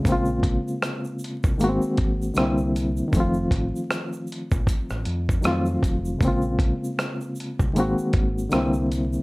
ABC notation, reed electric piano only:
X:1
M:4/4
L:1/8
Q:"Swing 16ths" 1/4=78
K:Bbm
V:1 name="Reed electric piano"
[D,A,B,CF]4 [E,A,B,_C=CG]2 [=D,=G,B,C=E]2 | [E,F,=A,CF]6 [E,G,A,CF]2 | [C,D,A,B,CF]4 [E,A,B,CG]2 [=D,=G,B,C=E]2 |]